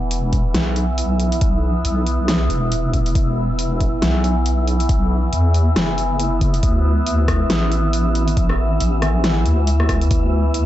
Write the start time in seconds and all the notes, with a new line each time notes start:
Already playing: E1 E3 B3 E4 E5
0.11 closed hi-hat
0.33 kick, closed hi-hat
0.54 B1, snare, closed hi-hat
0.76 closed hi-hat
0.98 closed hi-hat
1.20 closed hi-hat
1.32 closed hi-hat
1.41 kick, closed hi-hat
1.85 B1, closed hi-hat
2.07 closed hi-hat
2.28 snare, closed hi-hat
2.50 E1, closed hi-hat
2.72 closed hi-hat
2.94 kick, closed hi-hat
3.06 closed hi-hat
3.15 E1, kick, closed hi-hat
3.59 closed hi-hat
3.81 kick, closed hi-hat
4.02 B1, snare, closed hi-hat
4.24 closed hi-hat
4.46 closed hi-hat
4.68 closed hi-hat
4.80 closed hi-hat
4.89 kick, closed hi-hat
5.33 E2, closed hi-hat
5.54 closed hi-hat
5.76 F#1, snare, closed hi-hat
5.98 closed hi-hat
6.20 closed hi-hat
6.41 kick, closed hi-hat
6.54 closed hi-hat
6.63 D2, kick, closed hi-hat
7.07 closed hi-hat
7.28 kick, cross-stick, closed hi-hat
7.50 A1, snare, closed hi-hat
7.72 closed hi-hat
7.93 closed hi-hat
8.15 closed hi-hat
8.28 closed hi-hat
8.37 kick, closed hi-hat
8.50 cross-stick
8.80 A1, closed hi-hat
9.02 cross-stick, closed hi-hat
9.24 snare, closed hi-hat
9.46 D2, closed hi-hat
9.67 closed hi-hat
9.80 cross-stick
9.89 kick, cross-stick, closed hi-hat
10.01 closed hi-hat
10.11 D2, kick, closed hi-hat
10.54 closed hi-hat